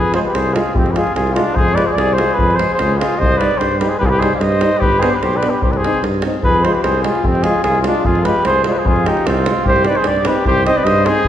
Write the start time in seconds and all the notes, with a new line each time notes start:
Already playing: F2 G#4 B4
0.12 G#3 F4 G#4 C5, davul high
0.25 G4 B4, davul high
0.34 C2 G#4 C5, davul high
0.46 davul high
0.54 G#3 F4 G#4, davul high
0.66 davul high
0.74 F2 C4 G4, davul low
0.86 davul high
0.91 G#3 F4 G4 B4
0.96 F4 G#4, davul high
1.07 davul high
1.15 C2 F4 G#4, davul high
1.27 davul high
1.33 G#3 D4 F4, davul high
1.47 davul high
1.54 F2 G#4 C5, davul low
1.68 davul high
1.74 G#3 F4 B4 D5, davul high
1.85 G#4 C5, davul high
1.93 C2 G#4 D5
1.98 davul high
2.09 davul high
2.13 G#4 C5
2.17 G#3 F4, davul high
2.30 B4, davul high
2.38 F2 G#4, davul low
2.51 davul high
2.55 G#3 F4 C5
2.59 G#4, davul high
2.71 C5, davul high
2.79 C#2 G#4, davul high
2.91 davul high
2.97 G#3 F4 G#4
3.01 davul high
3.12 D#5, davul high
3.19 C2 C5, davul low
3.32 davul high
3.38 G3 D#4 B4 D5, davul high
3.51 davul high
3.58 G2 G4 C5, davul high
3.72 davul high
3.78 G3 D#4 G4 B4, davul high
3.88 G#4 C5
3.93 davul high
3.99 C2 G4 B4, davul low
4.05 F4 G#4
4.09 G4 B4, davul high
4.19 G3 D#4 G#4 C5, davul high
4.33 D5 F5, davul high
4.38 G2 C5 D#5, davul high
4.52 davul high
4.61 G3 D#4, davul high
4.73 davul high
4.78 G1 G4 B4, davul low
4.92 davul high
4.99 B3 D4 G#4 C5, davul high
5.10 G4, davul high
5.15 B4
5.22 B1 G4 C5, davul high
5.33 B4 D5, davul high
5.43 B3 D4, davul high
5.50 G4 B4, davul high
5.62 C2 G4 C5, davul low
5.71 B4 D5, davul high
5.77 G#4 C5
5.84 C4 D#4, davul high
5.94 davul high
6.03 G2, davul high
6.14 davul high
6.22 C4 D#4, davul high
6.34 davul high
6.43 F2 G#4 B4, davul low
6.54 davul high
6.63 G#3 F4 C5, davul high
6.67 G#4
6.73 G4 B4, davul high
6.82 C2 C5, davul high
6.86 G#4
6.95 davul high
7.03 G#3 F4 G#4, davul high
7.07 F4
7.15 davul high
7.23 F2 C4 G4, davul low
7.35 davul high
7.42 G#3 F4 G#4, davul high
7.46 F4
7.55 davul high
7.63 C2 F4 G#4, davul high
7.75 davul high
7.82 G#3 F4, davul high
7.86 D4 F4
7.95 davul high
8.04 F2 F4 G#4, davul low
8.15 davul high
8.23 G#3 F4 G4 B4, davul high
8.36 davul high
8.45 C2 G#4 C5, davul high
8.55 davul high
8.64 G#3 F4 G#4 C5, davul high
8.70 B4 D5
8.75 G#4 C5, davul high
8.85 F2 F4 G#4, davul low
8.96 davul high
9.06 G#3 D#4 F4 G4, davul high
9.17 davul high
9.26 C2 C4 F4, davul high
9.37 davul high
9.46 G#3 F4, davul high
9.56 davul high
9.65 C2 G4 C5, davul low
9.76 davul high
9.85 D#4 B4 D5, davul high
9.89 C4
9.95 G#4 C5, davul high
10.04 G2 G4 D5, davul high
10.16 davul high
10.25 C4 D#4 G4 B4, davul high
10.35 davul high
10.46 C2 G4 C5, davul low
10.58 davul high
10.66 C4 D#4 C5 D#5, davul high
10.77 B4 D5, davul high
10.84 G2 C5 D#5, davul high
10.96 davul high
11.06 C4 D#4 G#4 C5, davul high
11.17 davul high
11.25 G1, davul low